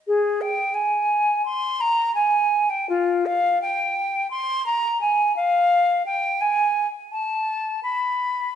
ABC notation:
X:1
M:4/4
L:1/16
Q:1/4=85
K:Ablyd
V:1 name="Flute"
A2 g2 a4 c'2 b2 a3 g | F2 f2 g4 c'2 b2 a2 f2- | f2 g2 a3 z =a4 =b4 |]